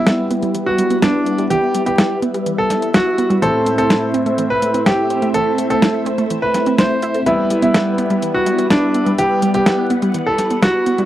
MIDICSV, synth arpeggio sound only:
0, 0, Header, 1, 2, 480
1, 0, Start_track
1, 0, Key_signature, 1, "minor"
1, 0, Tempo, 480000
1, 1504, Time_signature, 4, 2, 24, 8
1, 11053, End_track
2, 0, Start_track
2, 0, Title_t, "Synth arpeggio sound"
2, 0, Program_c, 0, 84
2, 65, Note_on_c, 0, 64, 75
2, 113, Note_off_c, 0, 64, 0
2, 306, Note_on_c, 0, 59, 92
2, 419, Note_off_c, 0, 59, 0
2, 425, Note_on_c, 0, 55, 95
2, 506, Note_off_c, 0, 55, 0
2, 546, Note_on_c, 0, 52, 73
2, 626, Note_off_c, 0, 52, 0
2, 785, Note_on_c, 0, 55, 74
2, 833, Note_off_c, 0, 55, 0
2, 905, Note_on_c, 0, 59, 80
2, 953, Note_off_c, 0, 59, 0
2, 1025, Note_on_c, 0, 64, 77
2, 1106, Note_off_c, 0, 64, 0
2, 1265, Note_on_c, 0, 59, 77
2, 1313, Note_off_c, 0, 59, 0
2, 1384, Note_on_c, 0, 55, 92
2, 1465, Note_off_c, 0, 55, 0
2, 1504, Note_on_c, 0, 52, 82
2, 1585, Note_off_c, 0, 52, 0
2, 1745, Note_on_c, 0, 55, 72
2, 1825, Note_off_c, 0, 55, 0
2, 1864, Note_on_c, 0, 59, 104
2, 1945, Note_off_c, 0, 59, 0
2, 1984, Note_on_c, 0, 64, 79
2, 2033, Note_off_c, 0, 64, 0
2, 2223, Note_on_c, 0, 59, 92
2, 2337, Note_off_c, 0, 59, 0
2, 2343, Note_on_c, 0, 55, 93
2, 2425, Note_off_c, 0, 55, 0
2, 2462, Note_on_c, 0, 52, 72
2, 2544, Note_off_c, 0, 52, 0
2, 2702, Note_on_c, 0, 55, 74
2, 2751, Note_off_c, 0, 55, 0
2, 2821, Note_on_c, 0, 59, 77
2, 2871, Note_off_c, 0, 59, 0
2, 2942, Note_on_c, 0, 64, 78
2, 3024, Note_off_c, 0, 64, 0
2, 3182, Note_on_c, 0, 59, 73
2, 3231, Note_off_c, 0, 59, 0
2, 3300, Note_on_c, 0, 55, 97
2, 3383, Note_off_c, 0, 55, 0
2, 3421, Note_on_c, 0, 52, 78
2, 3503, Note_off_c, 0, 52, 0
2, 3660, Note_on_c, 0, 57, 74
2, 3743, Note_off_c, 0, 57, 0
2, 3780, Note_on_c, 0, 60, 95
2, 3863, Note_off_c, 0, 60, 0
2, 3901, Note_on_c, 0, 64, 76
2, 3951, Note_off_c, 0, 64, 0
2, 4140, Note_on_c, 0, 60, 92
2, 4256, Note_off_c, 0, 60, 0
2, 4260, Note_on_c, 0, 57, 91
2, 4343, Note_off_c, 0, 57, 0
2, 4380, Note_on_c, 0, 52, 76
2, 4463, Note_off_c, 0, 52, 0
2, 4621, Note_on_c, 0, 57, 74
2, 4671, Note_off_c, 0, 57, 0
2, 4742, Note_on_c, 0, 60, 79
2, 4791, Note_off_c, 0, 60, 0
2, 4863, Note_on_c, 0, 64, 78
2, 4944, Note_off_c, 0, 64, 0
2, 5103, Note_on_c, 0, 60, 75
2, 5152, Note_off_c, 0, 60, 0
2, 5222, Note_on_c, 0, 57, 93
2, 5304, Note_off_c, 0, 57, 0
2, 5342, Note_on_c, 0, 52, 76
2, 5424, Note_off_c, 0, 52, 0
2, 5584, Note_on_c, 0, 57, 73
2, 5665, Note_off_c, 0, 57, 0
2, 5703, Note_on_c, 0, 60, 98
2, 5785, Note_off_c, 0, 60, 0
2, 5824, Note_on_c, 0, 64, 77
2, 5873, Note_off_c, 0, 64, 0
2, 6063, Note_on_c, 0, 60, 96
2, 6178, Note_off_c, 0, 60, 0
2, 6182, Note_on_c, 0, 57, 97
2, 6264, Note_off_c, 0, 57, 0
2, 6305, Note_on_c, 0, 52, 74
2, 6386, Note_off_c, 0, 52, 0
2, 6545, Note_on_c, 0, 60, 75
2, 6626, Note_off_c, 0, 60, 0
2, 6667, Note_on_c, 0, 60, 96
2, 6746, Note_off_c, 0, 60, 0
2, 6785, Note_on_c, 0, 64, 80
2, 6866, Note_off_c, 0, 64, 0
2, 7027, Note_on_c, 0, 64, 102
2, 7139, Note_off_c, 0, 64, 0
2, 7147, Note_on_c, 0, 69, 71
2, 7226, Note_off_c, 0, 69, 0
2, 7265, Note_on_c, 0, 52, 76
2, 7346, Note_off_c, 0, 52, 0
2, 7505, Note_on_c, 0, 55, 74
2, 7585, Note_off_c, 0, 55, 0
2, 7625, Note_on_c, 0, 59, 101
2, 7705, Note_off_c, 0, 59, 0
2, 7745, Note_on_c, 0, 64, 76
2, 7793, Note_off_c, 0, 64, 0
2, 7983, Note_on_c, 0, 59, 98
2, 8097, Note_off_c, 0, 59, 0
2, 8105, Note_on_c, 0, 55, 95
2, 8185, Note_off_c, 0, 55, 0
2, 8226, Note_on_c, 0, 52, 75
2, 8306, Note_off_c, 0, 52, 0
2, 8464, Note_on_c, 0, 55, 73
2, 8513, Note_off_c, 0, 55, 0
2, 8585, Note_on_c, 0, 59, 79
2, 8633, Note_off_c, 0, 59, 0
2, 8704, Note_on_c, 0, 64, 77
2, 8785, Note_off_c, 0, 64, 0
2, 8946, Note_on_c, 0, 59, 76
2, 8993, Note_off_c, 0, 59, 0
2, 9064, Note_on_c, 0, 55, 97
2, 9145, Note_off_c, 0, 55, 0
2, 9187, Note_on_c, 0, 52, 83
2, 9266, Note_off_c, 0, 52, 0
2, 9426, Note_on_c, 0, 55, 72
2, 9506, Note_off_c, 0, 55, 0
2, 9544, Note_on_c, 0, 59, 95
2, 9625, Note_off_c, 0, 59, 0
2, 9664, Note_on_c, 0, 64, 81
2, 9713, Note_off_c, 0, 64, 0
2, 9904, Note_on_c, 0, 59, 99
2, 10018, Note_off_c, 0, 59, 0
2, 10025, Note_on_c, 0, 55, 100
2, 10105, Note_off_c, 0, 55, 0
2, 10144, Note_on_c, 0, 52, 74
2, 10225, Note_off_c, 0, 52, 0
2, 10385, Note_on_c, 0, 55, 75
2, 10433, Note_off_c, 0, 55, 0
2, 10506, Note_on_c, 0, 59, 76
2, 10553, Note_off_c, 0, 59, 0
2, 10625, Note_on_c, 0, 64, 78
2, 10706, Note_off_c, 0, 64, 0
2, 10866, Note_on_c, 0, 59, 77
2, 10914, Note_off_c, 0, 59, 0
2, 10985, Note_on_c, 0, 55, 95
2, 11053, Note_off_c, 0, 55, 0
2, 11053, End_track
0, 0, End_of_file